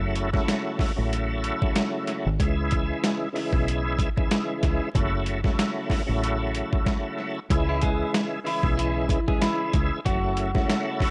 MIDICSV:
0, 0, Header, 1, 5, 480
1, 0, Start_track
1, 0, Key_signature, 4, "minor"
1, 0, Tempo, 638298
1, 1802, Time_signature, 4, 2, 24, 8
1, 8350, End_track
2, 0, Start_track
2, 0, Title_t, "Clean electric guitar"
2, 0, Program_c, 0, 27
2, 5781, Note_on_c, 0, 64, 82
2, 5787, Note_on_c, 0, 52, 60
2, 5873, Note_off_c, 0, 64, 0
2, 5876, Note_off_c, 0, 52, 0
2, 5882, Note_on_c, 0, 68, 74
2, 5888, Note_on_c, 0, 56, 66
2, 6098, Note_off_c, 0, 68, 0
2, 6101, Note_off_c, 0, 56, 0
2, 6365, Note_on_c, 0, 64, 81
2, 6371, Note_on_c, 0, 52, 64
2, 6486, Note_off_c, 0, 64, 0
2, 6489, Note_off_c, 0, 52, 0
2, 6600, Note_on_c, 0, 64, 77
2, 6606, Note_on_c, 0, 52, 62
2, 6954, Note_off_c, 0, 64, 0
2, 6957, Note_off_c, 0, 52, 0
2, 6979, Note_on_c, 0, 68, 69
2, 6985, Note_on_c, 0, 56, 53
2, 7072, Note_off_c, 0, 68, 0
2, 7075, Note_off_c, 0, 56, 0
2, 7081, Note_on_c, 0, 64, 91
2, 7086, Note_on_c, 0, 52, 72
2, 7297, Note_off_c, 0, 64, 0
2, 7300, Note_off_c, 0, 52, 0
2, 7561, Note_on_c, 0, 66, 111
2, 7567, Note_on_c, 0, 54, 80
2, 8350, Note_off_c, 0, 54, 0
2, 8350, Note_off_c, 0, 66, 0
2, 8350, End_track
3, 0, Start_track
3, 0, Title_t, "Tonewheel organ"
3, 0, Program_c, 1, 16
3, 0, Note_on_c, 1, 49, 90
3, 0, Note_on_c, 1, 54, 84
3, 0, Note_on_c, 1, 57, 83
3, 0, Note_on_c, 1, 64, 98
3, 222, Note_off_c, 1, 49, 0
3, 224, Note_off_c, 1, 54, 0
3, 226, Note_off_c, 1, 57, 0
3, 229, Note_off_c, 1, 64, 0
3, 247, Note_on_c, 1, 49, 88
3, 251, Note_on_c, 1, 54, 83
3, 256, Note_on_c, 1, 57, 78
3, 260, Note_on_c, 1, 64, 101
3, 689, Note_off_c, 1, 49, 0
3, 691, Note_off_c, 1, 54, 0
3, 693, Note_off_c, 1, 57, 0
3, 695, Note_off_c, 1, 64, 0
3, 720, Note_on_c, 1, 49, 87
3, 725, Note_on_c, 1, 54, 80
3, 730, Note_on_c, 1, 57, 76
3, 734, Note_on_c, 1, 64, 99
3, 1718, Note_off_c, 1, 49, 0
3, 1720, Note_off_c, 1, 54, 0
3, 1723, Note_off_c, 1, 57, 0
3, 1725, Note_off_c, 1, 64, 0
3, 1797, Note_on_c, 1, 49, 93
3, 1802, Note_on_c, 1, 52, 76
3, 1807, Note_on_c, 1, 56, 87
3, 1811, Note_on_c, 1, 64, 96
3, 2469, Note_off_c, 1, 49, 0
3, 2472, Note_off_c, 1, 52, 0
3, 2474, Note_off_c, 1, 56, 0
3, 2477, Note_off_c, 1, 64, 0
3, 2503, Note_on_c, 1, 49, 88
3, 2508, Note_on_c, 1, 52, 84
3, 2512, Note_on_c, 1, 56, 85
3, 2518, Note_on_c, 1, 64, 101
3, 3074, Note_off_c, 1, 49, 0
3, 3077, Note_off_c, 1, 52, 0
3, 3079, Note_off_c, 1, 56, 0
3, 3081, Note_off_c, 1, 64, 0
3, 3130, Note_on_c, 1, 49, 94
3, 3135, Note_on_c, 1, 52, 86
3, 3139, Note_on_c, 1, 56, 85
3, 3144, Note_on_c, 1, 64, 100
3, 3676, Note_off_c, 1, 49, 0
3, 3679, Note_off_c, 1, 52, 0
3, 3681, Note_off_c, 1, 56, 0
3, 3683, Note_off_c, 1, 64, 0
3, 3716, Note_on_c, 1, 49, 89
3, 3720, Note_on_c, 1, 54, 81
3, 3725, Note_on_c, 1, 57, 80
3, 3730, Note_on_c, 1, 64, 99
3, 4062, Note_off_c, 1, 49, 0
3, 4064, Note_off_c, 1, 54, 0
3, 4067, Note_off_c, 1, 57, 0
3, 4069, Note_off_c, 1, 64, 0
3, 4085, Note_on_c, 1, 49, 87
3, 4090, Note_on_c, 1, 54, 80
3, 4095, Note_on_c, 1, 57, 77
3, 4100, Note_on_c, 1, 64, 106
3, 4528, Note_off_c, 1, 49, 0
3, 4530, Note_off_c, 1, 54, 0
3, 4533, Note_off_c, 1, 57, 0
3, 4535, Note_off_c, 1, 64, 0
3, 4559, Note_on_c, 1, 49, 87
3, 4564, Note_on_c, 1, 54, 77
3, 4569, Note_on_c, 1, 57, 73
3, 4573, Note_on_c, 1, 64, 96
3, 5558, Note_off_c, 1, 49, 0
3, 5560, Note_off_c, 1, 54, 0
3, 5562, Note_off_c, 1, 57, 0
3, 5564, Note_off_c, 1, 64, 0
3, 5638, Note_on_c, 1, 49, 93
3, 5643, Note_on_c, 1, 52, 77
3, 5648, Note_on_c, 1, 56, 85
3, 5652, Note_on_c, 1, 64, 103
3, 6310, Note_off_c, 1, 49, 0
3, 6312, Note_off_c, 1, 52, 0
3, 6315, Note_off_c, 1, 56, 0
3, 6317, Note_off_c, 1, 64, 0
3, 6345, Note_on_c, 1, 49, 94
3, 6350, Note_on_c, 1, 52, 84
3, 6355, Note_on_c, 1, 56, 87
3, 6359, Note_on_c, 1, 64, 101
3, 6915, Note_off_c, 1, 49, 0
3, 6917, Note_off_c, 1, 52, 0
3, 6920, Note_off_c, 1, 56, 0
3, 6922, Note_off_c, 1, 64, 0
3, 6970, Note_on_c, 1, 49, 94
3, 6975, Note_on_c, 1, 52, 90
3, 6979, Note_on_c, 1, 56, 83
3, 6984, Note_on_c, 1, 64, 98
3, 7516, Note_off_c, 1, 49, 0
3, 7519, Note_off_c, 1, 52, 0
3, 7521, Note_off_c, 1, 56, 0
3, 7523, Note_off_c, 1, 64, 0
3, 7556, Note_on_c, 1, 49, 91
3, 7560, Note_on_c, 1, 54, 86
3, 7565, Note_on_c, 1, 57, 86
3, 7570, Note_on_c, 1, 64, 99
3, 7902, Note_off_c, 1, 49, 0
3, 7904, Note_off_c, 1, 54, 0
3, 7907, Note_off_c, 1, 57, 0
3, 7909, Note_off_c, 1, 64, 0
3, 7927, Note_on_c, 1, 49, 90
3, 7932, Note_on_c, 1, 54, 82
3, 7936, Note_on_c, 1, 57, 80
3, 7941, Note_on_c, 1, 64, 110
3, 8350, Note_off_c, 1, 49, 0
3, 8350, Note_off_c, 1, 54, 0
3, 8350, Note_off_c, 1, 57, 0
3, 8350, Note_off_c, 1, 64, 0
3, 8350, End_track
4, 0, Start_track
4, 0, Title_t, "Fingered electric bass"
4, 0, Program_c, 2, 33
4, 0, Note_on_c, 2, 30, 99
4, 275, Note_off_c, 2, 30, 0
4, 739, Note_on_c, 2, 33, 83
4, 1131, Note_off_c, 2, 33, 0
4, 1700, Note_on_c, 2, 32, 92
4, 1784, Note_off_c, 2, 32, 0
4, 1803, Note_on_c, 2, 37, 100
4, 2195, Note_off_c, 2, 37, 0
4, 2653, Note_on_c, 2, 35, 81
4, 3047, Note_off_c, 2, 35, 0
4, 3484, Note_on_c, 2, 37, 81
4, 3594, Note_off_c, 2, 37, 0
4, 3724, Note_on_c, 2, 30, 103
4, 4115, Note_off_c, 2, 30, 0
4, 4580, Note_on_c, 2, 33, 83
4, 4971, Note_off_c, 2, 33, 0
4, 5644, Note_on_c, 2, 37, 102
4, 6035, Note_off_c, 2, 37, 0
4, 6493, Note_on_c, 2, 35, 83
4, 6888, Note_off_c, 2, 35, 0
4, 7324, Note_on_c, 2, 37, 83
4, 7434, Note_off_c, 2, 37, 0
4, 7564, Note_on_c, 2, 30, 108
4, 7955, Note_off_c, 2, 30, 0
4, 8350, End_track
5, 0, Start_track
5, 0, Title_t, "Drums"
5, 117, Note_on_c, 9, 42, 84
5, 192, Note_off_c, 9, 42, 0
5, 252, Note_on_c, 9, 36, 91
5, 262, Note_on_c, 9, 38, 35
5, 328, Note_off_c, 9, 36, 0
5, 337, Note_off_c, 9, 38, 0
5, 363, Note_on_c, 9, 38, 118
5, 369, Note_on_c, 9, 42, 94
5, 438, Note_off_c, 9, 38, 0
5, 444, Note_off_c, 9, 42, 0
5, 595, Note_on_c, 9, 36, 89
5, 606, Note_on_c, 9, 46, 49
5, 670, Note_off_c, 9, 36, 0
5, 681, Note_off_c, 9, 46, 0
5, 848, Note_on_c, 9, 42, 94
5, 924, Note_off_c, 9, 42, 0
5, 1082, Note_on_c, 9, 42, 79
5, 1157, Note_off_c, 9, 42, 0
5, 1219, Note_on_c, 9, 36, 106
5, 1294, Note_off_c, 9, 36, 0
5, 1320, Note_on_c, 9, 42, 97
5, 1323, Note_on_c, 9, 38, 109
5, 1396, Note_off_c, 9, 42, 0
5, 1398, Note_off_c, 9, 38, 0
5, 1560, Note_on_c, 9, 42, 72
5, 1635, Note_off_c, 9, 42, 0
5, 1803, Note_on_c, 9, 36, 115
5, 1805, Note_on_c, 9, 42, 102
5, 1878, Note_off_c, 9, 36, 0
5, 1880, Note_off_c, 9, 42, 0
5, 2037, Note_on_c, 9, 42, 81
5, 2048, Note_on_c, 9, 36, 90
5, 2112, Note_off_c, 9, 42, 0
5, 2123, Note_off_c, 9, 36, 0
5, 2283, Note_on_c, 9, 38, 109
5, 2289, Note_on_c, 9, 42, 92
5, 2359, Note_off_c, 9, 38, 0
5, 2364, Note_off_c, 9, 42, 0
5, 2526, Note_on_c, 9, 46, 50
5, 2601, Note_off_c, 9, 46, 0
5, 2652, Note_on_c, 9, 36, 80
5, 2727, Note_off_c, 9, 36, 0
5, 2769, Note_on_c, 9, 42, 93
5, 2845, Note_off_c, 9, 42, 0
5, 2997, Note_on_c, 9, 36, 94
5, 3003, Note_on_c, 9, 42, 79
5, 3073, Note_off_c, 9, 36, 0
5, 3078, Note_off_c, 9, 42, 0
5, 3139, Note_on_c, 9, 36, 100
5, 3214, Note_off_c, 9, 36, 0
5, 3241, Note_on_c, 9, 42, 97
5, 3244, Note_on_c, 9, 38, 112
5, 3316, Note_off_c, 9, 42, 0
5, 3319, Note_off_c, 9, 38, 0
5, 3480, Note_on_c, 9, 42, 72
5, 3483, Note_on_c, 9, 36, 102
5, 3555, Note_off_c, 9, 42, 0
5, 3558, Note_off_c, 9, 36, 0
5, 3723, Note_on_c, 9, 36, 113
5, 3725, Note_on_c, 9, 42, 101
5, 3798, Note_off_c, 9, 36, 0
5, 3800, Note_off_c, 9, 42, 0
5, 3957, Note_on_c, 9, 42, 78
5, 4032, Note_off_c, 9, 42, 0
5, 4093, Note_on_c, 9, 36, 89
5, 4102, Note_on_c, 9, 38, 35
5, 4168, Note_off_c, 9, 36, 0
5, 4177, Note_off_c, 9, 38, 0
5, 4204, Note_on_c, 9, 38, 116
5, 4209, Note_on_c, 9, 42, 93
5, 4279, Note_off_c, 9, 38, 0
5, 4284, Note_off_c, 9, 42, 0
5, 4435, Note_on_c, 9, 36, 87
5, 4446, Note_on_c, 9, 46, 50
5, 4510, Note_off_c, 9, 36, 0
5, 4521, Note_off_c, 9, 46, 0
5, 4689, Note_on_c, 9, 42, 92
5, 4764, Note_off_c, 9, 42, 0
5, 4923, Note_on_c, 9, 42, 79
5, 4998, Note_off_c, 9, 42, 0
5, 5059, Note_on_c, 9, 36, 105
5, 5134, Note_off_c, 9, 36, 0
5, 5161, Note_on_c, 9, 36, 108
5, 5163, Note_on_c, 9, 38, 94
5, 5236, Note_off_c, 9, 36, 0
5, 5239, Note_off_c, 9, 38, 0
5, 5643, Note_on_c, 9, 36, 118
5, 5645, Note_on_c, 9, 42, 103
5, 5718, Note_off_c, 9, 36, 0
5, 5720, Note_off_c, 9, 42, 0
5, 5877, Note_on_c, 9, 42, 80
5, 5888, Note_on_c, 9, 36, 93
5, 5952, Note_off_c, 9, 42, 0
5, 5963, Note_off_c, 9, 36, 0
5, 6123, Note_on_c, 9, 38, 116
5, 6129, Note_on_c, 9, 42, 94
5, 6199, Note_off_c, 9, 38, 0
5, 6204, Note_off_c, 9, 42, 0
5, 6366, Note_on_c, 9, 46, 50
5, 6441, Note_off_c, 9, 46, 0
5, 6492, Note_on_c, 9, 36, 88
5, 6567, Note_off_c, 9, 36, 0
5, 6610, Note_on_c, 9, 42, 100
5, 6685, Note_off_c, 9, 42, 0
5, 6837, Note_on_c, 9, 36, 101
5, 6843, Note_on_c, 9, 42, 83
5, 6913, Note_off_c, 9, 36, 0
5, 6918, Note_off_c, 9, 42, 0
5, 6979, Note_on_c, 9, 36, 109
5, 7054, Note_off_c, 9, 36, 0
5, 7080, Note_on_c, 9, 42, 100
5, 7083, Note_on_c, 9, 38, 111
5, 7156, Note_off_c, 9, 42, 0
5, 7158, Note_off_c, 9, 38, 0
5, 7320, Note_on_c, 9, 42, 75
5, 7322, Note_on_c, 9, 36, 103
5, 7395, Note_off_c, 9, 42, 0
5, 7397, Note_off_c, 9, 36, 0
5, 7563, Note_on_c, 9, 36, 114
5, 7564, Note_on_c, 9, 42, 99
5, 7638, Note_off_c, 9, 36, 0
5, 7639, Note_off_c, 9, 42, 0
5, 7797, Note_on_c, 9, 42, 83
5, 7872, Note_off_c, 9, 42, 0
5, 7932, Note_on_c, 9, 36, 92
5, 7941, Note_on_c, 9, 38, 36
5, 8008, Note_off_c, 9, 36, 0
5, 8016, Note_off_c, 9, 38, 0
5, 8043, Note_on_c, 9, 38, 114
5, 8049, Note_on_c, 9, 42, 93
5, 8118, Note_off_c, 9, 38, 0
5, 8124, Note_off_c, 9, 42, 0
5, 8275, Note_on_c, 9, 36, 91
5, 8286, Note_on_c, 9, 46, 51
5, 8350, Note_off_c, 9, 36, 0
5, 8350, Note_off_c, 9, 46, 0
5, 8350, End_track
0, 0, End_of_file